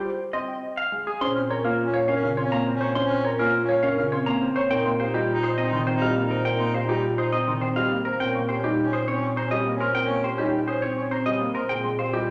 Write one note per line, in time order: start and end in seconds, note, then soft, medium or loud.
0.05 0.24 C5 medium
0.33 0.53 C4 medium
0.33 0.53 D#5 medium
0.33 0.39 C6 medium
0.48 0.54 G5 soft
0.62 0.68 D#5 medium
0.77 0.96 F5 medium
0.92 1.11 G#3 medium
1.07 1.26 G#4 soft
1.21 4.55 A#2 medium
1.21 1.40 C#4 medium
1.21 1.43 C#4 soft
1.21 1.40 C5 medium
1.21 1.40 C6 medium
1.35 1.55 C4 medium
1.35 1.41 F6 medium
1.50 1.73 C#4 soft
1.50 1.69 A#4 medium
1.50 1.69 C#5 medium
1.50 1.56 A#5 medium
1.64 1.84 A#3 medium
1.64 1.84 F4 medium
1.64 1.84 A#4 medium
1.64 1.70 F5 medium
1.81 2.03 C#4 medium
1.94 2.13 C#5 medium
1.94 2.00 F5 medium
2.08 2.27 C#4 medium
2.08 2.33 C#4 medium
2.08 2.27 A#4 medium
2.08 2.27 F5 medium
2.08 2.14 C#6 medium
2.23 2.42 C#3 medium
2.23 2.29 F6 medium
2.37 2.56 C4 medium
2.37 2.56 C#5 medium
2.37 2.43 C6 medium
2.42 2.64 C#4 medium
2.52 2.71 A#3 medium
2.52 2.58 F5 medium
2.52 2.71 A#5 medium
2.67 2.86 C4 medium
2.73 2.94 C#4 medium
2.81 3.00 C5 medium
2.81 3.00 C#5 medium
2.81 2.87 C#6 medium
2.95 3.15 C#4 medium
2.95 3.15 C5 medium
2.95 3.15 C6 medium
3.03 3.25 C#4 medium
3.10 3.29 C4 medium
3.10 3.16 F6 medium
3.25 3.44 A#4 medium
3.25 3.39 C#5 medium
3.25 3.31 A#5 medium
3.34 3.55 C#4 medium
3.39 3.58 A#3 medium
3.39 3.58 F4 medium
3.39 3.58 A#4 loud
3.39 3.45 F5 medium
3.64 3.85 C#4 medium
3.68 3.88 C#5 medium
3.68 3.74 F5 medium
3.83 4.02 C#4 loud
3.83 4.02 A#4 medium
3.83 4.02 F5 loud
3.83 3.89 C#6 medium
3.95 4.17 C#3 medium
3.95 4.16 C#4 medium
3.95 4.04 F6 medium
4.12 4.31 C4 medium
4.12 4.31 C#5 medium
4.12 4.18 C6 medium
4.25 4.46 A#3 medium
4.25 4.46 C#4 soft
4.25 4.33 F5 medium
4.25 4.46 A#5 loud
4.41 4.60 C4 medium
4.56 4.75 C5 medium
4.56 4.75 C#5 medium
4.56 4.62 C#6 medium
4.70 8.04 A#2 medium
4.70 4.90 C4 loud
4.70 4.91 D#4 soft
4.70 4.90 A#4 medium
4.70 4.90 G5 loud
4.85 5.04 A#3 medium
4.85 4.91 C6 medium
5.00 5.22 D#4 medium
5.00 5.19 G4 medium
5.00 5.19 C5 medium
5.00 5.06 F5 medium
5.14 5.33 G3 medium
5.14 5.33 F4 medium
5.14 5.33 G4 medium
5.14 5.20 D#5 medium
5.31 5.52 D#4 medium
5.43 5.62 C5 medium
5.43 5.49 D#6 medium
5.58 5.77 C4 medium
5.58 5.83 D#4 medium
5.58 5.77 D#5 medium
5.58 5.64 A#5 medium
5.72 5.92 D#3 medium
5.72 5.78 C6 medium
5.87 6.06 C4 medium
5.87 6.06 C5 medium
5.87 5.93 G5 medium
5.93 6.14 D#4 medium
6.01 6.21 G3 medium
6.01 6.07 D#5 medium
6.01 6.21 F5 medium
6.17 6.35 A#3 medium
6.23 6.44 D#4 medium
6.30 6.50 A#4 medium
6.30 6.50 C5 medium
6.30 6.36 A#5 medium
6.45 6.64 C4 medium
6.45 6.64 A#4 medium
6.45 6.64 G5 medium
6.53 6.74 D#4 medium
6.60 6.79 A#3 medium
6.60 6.66 C6 medium
6.74 6.93 G4 medium
6.74 6.93 C5 medium
6.74 6.80 F5 medium
6.84 7.05 D#4 medium
6.89 7.08 G3 medium
6.89 7.08 F4 medium
6.89 7.08 G4 medium
6.89 6.95 D#5 medium
7.14 7.35 D#4 medium
7.14 7.37 C5 medium
7.14 7.24 D#6 medium
7.18 7.37 C5 medium
7.33 7.52 C4 medium
7.33 7.52 D#5 medium
7.33 7.39 A#5 medium
7.45 7.66 D#3 medium
7.45 7.66 D#4 soft
7.45 7.53 C6 medium
7.61 7.81 C4 medium
7.61 7.81 C5 medium
7.61 7.68 G5 medium
7.75 7.95 G3 medium
7.75 7.97 D#4 soft
7.75 7.82 D#5 medium
7.75 7.95 F5 medium
7.92 8.10 A#3 medium
8.05 8.24 A#4 medium
8.05 8.25 C5 medium
8.05 8.11 A#5 medium
8.20 11.54 A#2 medium
8.20 8.39 C4 medium
8.20 8.42 C#4 soft
8.20 8.39 A#4 medium
8.20 8.39 G5 medium
8.34 8.54 A#3 medium
8.34 8.40 C#6 medium
8.49 8.72 C#4 soft
8.49 8.68 G4 medium
8.49 8.68 C5 medium
8.49 8.55 G5 medium
8.64 8.83 G3 medium
8.64 8.83 D#4 medium
8.64 8.83 G4 medium
8.64 8.70 D#5 medium
8.81 9.02 C#4 medium
8.93 9.07 C5 medium
8.93 9.12 C5 medium
8.93 8.99 D#6 medium
9.08 9.27 C4 medium
9.08 9.33 C#4 medium
9.08 9.27 C#5 medium
9.22 9.28 C#6 medium
9.37 9.56 C4 medium
9.37 9.56 C5 medium
9.37 9.43 A#5 medium
9.42 9.63 C#4 medium
9.51 9.70 G3 medium
9.51 9.70 D#5 medium
9.51 9.57 D#5 medium
9.66 9.85 A#3 medium
9.72 9.94 C#4 medium
9.80 9.99 A#4 medium
9.80 9.99 C5 medium
9.80 9.86 C6 medium
9.95 10.14 C4 medium
9.95 10.14 A#4 medium
9.95 10.14 G5 medium
10.02 10.24 C#4 medium
10.10 10.28 A#3 medium
10.10 10.16 C#6 medium
10.24 10.43 G4 medium
10.24 10.43 C5 medium
10.24 10.30 G5 medium
10.33 10.54 C#4 medium
10.38 10.58 G3 medium
10.38 10.57 D#4 medium
10.38 10.57 G4 medium
10.38 10.45 D#5 medium
10.63 10.85 C#4 medium
10.68 10.82 C5 medium
10.68 10.87 C5 medium
10.68 10.74 D#6 medium
10.82 11.01 C4 medium
10.82 11.01 C#5 medium
10.94 11.15 C#4 soft
10.94 11.03 C#6 medium
11.11 11.30 C4 medium
11.11 11.30 C5 medium
11.11 11.18 A#5 medium
11.24 11.45 G3 medium
11.24 11.46 C#4 soft
11.24 11.32 D#5 medium
11.24 11.45 D#5 medium
11.41 11.60 A#3 medium
11.55 11.74 A#4 medium
11.55 11.74 C5 medium
11.55 11.61 C6 medium
11.69 12.30 A#2 medium
11.69 11.91 C4 soft
11.69 11.89 C4 medium
11.69 11.89 G#4 medium
11.69 11.88 G5 medium
11.84 12.03 G#3 medium
11.84 11.90 C6 medium
11.99 12.21 C4 soft
11.99 12.18 C5 medium
11.99 12.05 F5 medium
12.13 12.30 G3 medium
12.13 12.30 F4 medium
12.13 12.30 G4 medium
12.13 12.19 D#5 medium